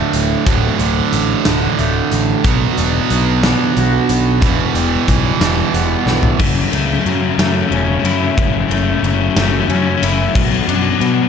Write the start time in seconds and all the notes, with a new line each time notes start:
Already playing: D2 A2 D3 A3
0.13 D1 A2, closed hi-hat
0.45 D1 D2 A2 D3, kick, closed hi-hat
0.79 D1 D3, closed hi-hat
1.12 A1 A2, closed hi-hat
1.45 D1 D3, snare, closed hi-hat
1.78 D1 A3, closed hi-hat
2.11 A1 A2, closed hi-hat
2.44 B1 B2 F#3 B3, kick, closed hi-hat
2.77 E1 D4, closed hi-hat
3.10 B1 B3, closed hi-hat
3.43 D4, snare, closed hi-hat
3.77 B1 F#4, closed hi-hat
4.09 B1 B3, closed hi-hat
4.42 E1 E2 B2 E3, kick, closed hi-hat
4.74 E1 G3, closed hi-hat
5.07 B1 E3, kick, closed hi-hat
5.40 E1 G3, snare, closed hi-hat
5.74 E1 B3, closed hi-hat
6.06 B1 E3, snare
6.23 floor tom
6.39 F#1 F#2 C#3, kick, crash
6.47 F#2 C#3
6.54 F#2 C#3
6.61 F#2 C#3
6.69 C#2 F#2 C#3 A3, ride
6.77 F#2 C#3
6.85 F#2 C#3
6.93 F#2 C#3
6.99 F#2 C#3
7.05 F#2 C#3 F#3, ride
7.14 F#2 C#3
7.22 F#2 C#3
7.30 F#2 C#3
7.38 F#2 C#3 A3, snare, ride
7.45 F#2 C#3
7.52 F#2 C#3
7.61 F#2 C#3
7.68 E1 F#2 C#3
7.72 F#2 C#4, ride
7.77 C#3
7.83 F#2 C#3
7.90 F#2 C#3
7.99 F#2 C#3
8.03 F#2 C#3 E4, ride
8.13 F#2 C#3
8.22 F#2 C#3
8.28 F#2 C#3
8.37 F#1 F#2 C#3, kick, ride
8.45 F#2 C#3
8.52 F#2 C#3
8.58 F#2 C#3
8.67 F#1 F#2 C#3 A3, ride
8.74 F#2 C#3
8.83 F#2 C#3
8.90 F#2 C#3
8.97 F#2 C#3
9.03 F#1 F#2 C#3 F#3, ride
9.13 F#2 C#3
9.21 F#2 C#3
9.29 F#2 C#3
9.36 F#1 F#2 C#3 A3, snare, ride
9.43 F#2 C#3
9.51 F#2 C#3
9.59 F#2 C#3
9.66 F#2 C#3 C#4, ride
9.74 F#2 C#3
9.82 F#2 C#3
9.89 F#2 C#3
9.97 F#2 C#3
10.02 F#1 F#2 C#3 E4, ride
10.12 F#2 C#3
10.20 F#2 C#3
10.27 F#2 C#3
10.35 B1 B2 F#3, kick, crash
10.43 B2 F#3
10.51 B2 F#3
10.59 B2 F#3
10.66 F#2 B2 F#3 D4, ride
10.74 B2 F#3
10.81 B2 F#3
10.90 B2 F#3
10.98 B2 F#3 B3, ride
11.06 B2 F#3
11.14 B2 F#3
11.21 B2 F#3